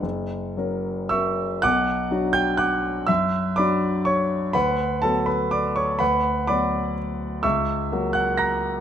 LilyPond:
<<
  \new Staff \with { instrumentName = "Grand piano" } { \time 3/4 \key b \minor \tempo 4 = 123 fis''2 <e'' cis''' e'''>4 | <fis'' d''' fis'''>4. <g'' g'''>8 <fis'' d''' fis'''>4 | <e'' e'''>4 <d'' b'' d'''>4 <cis'' cis'''>4 | <b' fis'' b''>4 <a' a''>8 <b' b''>8 <d'' d'''>8 <cis'' cis'''>8 |
<b' fis'' b''>4 <d'' b'' d'''>4 r4 | <e'' cis''' e'''>4. <fis'' fis'''>8 <ais'' fis''' ais'''>4 | }
  \new Staff \with { instrumentName = "Grand piano" } { \time 3/4 \key b \minor fis,,4 <fis cis' ais'>4 <fis cis' ais'>4 | b,,4 <fis d' fis'>2 | fis,4 <fis d' fis'>2 | d,4 <fis b fis'>2 |
d,4 <fis b fis'>2 | cis,4 <fis ais fis'>2 | }
>>